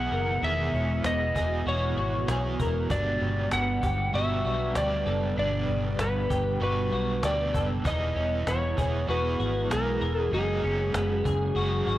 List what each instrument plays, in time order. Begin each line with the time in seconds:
Already playing: ambient pad B2 G#3 B3 G#4, overdriven electric guitar E3 B3 E4 G#4, clean electric guitar G#4, electric slide guitar F#5
0.12 fingered electric bass F#1, clean electric guitar A#4, cajon slap
0.42 fingered electric bass E1, clean electric guitar D#3, overdriven electric guitar E3 B3 G#4, ambient pad F#4, electric slide guitar E5, cajon slap
0.74 fingered electric bass E1, clean electric guitar C#4, cajon slap
1.04 fingered electric bass E1, clean electric guitar B3, electric slide guitar D#5, cajon slap
1.35 fingered electric bass E1, overdriven electric guitar B3 E4 G#4, clean electric guitar G#4, cajon bass
1.66 fingered electric bass E1, overdriven electric guitar E3 B3 E4 G#4, clean electric guitar F#4, electric slide guitar C#5, cajon slap
1.97 fingered electric bass G#1, clean electric guitar F#4, cajon slap
2.27 fingered electric bass B1, overdriven electric guitar E3 B3 E4 G#4, clean electric guitar G#4, cajon slap
2.59 fingered electric bass E1, clean electric guitar A#4, cajon bass
2.88 fingered electric bass G1, overdriven electric guitar G2 D3 G3 B3, ambient pad B2 G3 B4, clean electric guitar D4, electric slide guitar D5, cajon bass
2.94 overdriven electric guitar G4
3.21 fingered electric bass G1, clean electric guitar C#3, cajon slap
3.51 fingered electric bass G1, clean electric guitar B3, electric slide guitar F#5, cajon slap
3.83 fingered electric bass G1, clean electric guitar G4, cajon bass
4.13 fingered electric bass G1, overdriven electric guitar G3 B3 D4 G4, clean electric guitar F#4, electric slide guitar E5, cajon slap
4.45 fingered electric bass B1, clean electric guitar F#4, cajon slap
4.74 fingered electric bass D2, overdriven electric guitar G3 B3 D4 G4, clean electric guitar G4, electric slide guitar D5, cajon slap
5.06 fingered electric bass F#1, clean electric guitar A4, cajon slap
5.36 fingered electric bass G1, overdriven electric guitar G2 D3 G3 B3, clean electric guitar D4, electric slide guitar D5, cajon slap
5.42 overdriven electric guitar G4
5.68 fingered electric bass G1, clean electric guitar C#3, cajon slap
5.99 fingered electric bass G1, clean electric guitar B3, electric slide guitar B4, cajon slap
6.30 fingered electric bass G1, clean electric guitar G4, cajon bass
6.60 fingered electric bass G1, overdriven electric guitar G3 B3 D4 G4, clean electric guitar F#4, electric slide guitar B4, cajon slap
6.92 fingered electric bass B1, clean electric guitar F#4, cajon slap
7.22 fingered electric bass D2, overdriven electric guitar G3 B3 D4 G4, clean electric guitar G4, electric slide guitar D5, cajon slap
7.54 fingered electric bass F#1, clean electric guitar A4, cajon bass
7.84 fingered electric bass E1, overdriven electric guitar E3 B3 E4 G#4, ambient pad E3 G#3 B3 G#4, clean electric guitar D#4, electric slide guitar D#5, cajon bass
8.16 fingered electric bass E1, clean electric guitar C#4, cajon slap
8.47 fingered electric bass E1, clean electric guitar B3, electric slide guitar C#5, cajon slap
8.77 fingered electric bass E1, overdriven electric guitar B3 E4 G#4, clean electric guitar G#4, cajon bass
9.08 fingered electric bass E1, overdriven electric guitar E3 B3 E4 G#4, clean electric guitar F#4, electric slide guitar B4, cajon slap
9.40 fingered electric bass G#1, clean electric guitar F#4, cajon slap
9.70 fingered electric bass B1, overdriven electric guitar E3 B3 E4 G#4, clean electric guitar G#4, electric slide guitar A#4, cajon slap
10.02 fingered electric bass E1, clean electric guitar A#4, cajon slap
10.21 electric slide guitar G#4
10.31 fingered electric bass F#1, overdriven electric guitar F#2 C#3 F#3 C#4, ambient pad C#3 F#3 F#4, clean electric guitar D#4, electric slide guitar G#4, cajon slap
10.36 overdriven electric guitar F#4 G#4
10.63 fingered electric bass F#1, clean electric guitar C#4, cajon slap
10.94 fingered electric bass F#1, clean electric guitar B3, cajon slap
11.25 fingered electric bass F#1, clean electric guitar G#4, cajon bass
11.55 fingered electric bass F#1, overdriven electric guitar F#3 C#4 F#4 G#4, clean electric guitar F#4, cajon slap
11.87 fingered electric bass G#1, clean electric guitar F#4, cajon slap